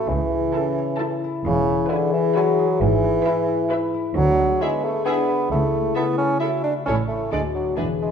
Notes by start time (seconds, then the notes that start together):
Already playing: A2 C#4 E4 A4 C#5 E5
0.07 C#2 C#3 E3 E4
0.32 C#4
0.53 C#4 E4 A4 A5
0.78 C#5
0.99 E4 A4 A5
1.24 E4
1.44 E1 E2 C#3 E3
1.68 E4
1.89 D3 E4 G#4 B4 G#5
2.13 E3 E5
2.35 F#3 E4 B4 G#5
2.59 G#4
2.80 G#1 G#2 E3
3.04 B3
3.26 E4 B4 E5
3.48 E4
3.70 E4 B4 E5
3.94 E4
4.16 D2 D3 F#3 D4
4.38 G#3
4.60 G#3 B3 E4 G#4 B4 E5
4.84 A3 G#4
5.05 B3 D4 E4 G#4 B4 E5
5.29 E4
5.51 C#2 C#3 A3 E4
5.75 A3
5.95 B3 E4 A4 C#5 E5
6.17 C#4 A4
6.40 E4 F#4 A4 C#5 E5
6.64 D4 E4
6.85 A1 A2 C#4 E4 A4 C#5
7.08 A3 E4 C#5
7.30 D2 D3 G#3 D4 F#4 A4 D5
7.55 F#3 D4 D5
7.76 E1 E2 E3 D4 G#4 B4
8.02 G#3 D4 B4